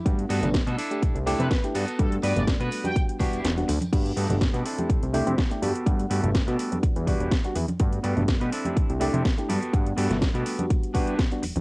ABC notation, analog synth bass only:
X:1
M:4/4
L:1/16
Q:1/4=124
K:G
V:1 name="Analog synth bass" clef=bass
G,,2 G,, G,,,2 B,, z2 C,, C,,2 C, z2 G,, z | G,,2 G,, G,,,2 B,, z4 z E,,, E,,,2 D,, z | G,,2 G,, G,,,2 B,, z2 C,, C,,2 C, z2 G,, z | G,,2 G,, G,,,2 B,, z3 E,,2 E,,, z2 E,, z |
G,,2 G,, G,,,2 B,, z2 C,, C,,2 C, z2 G,, z | G,,2 G,, G,,,2 B,, z8 E,,, E,,, |]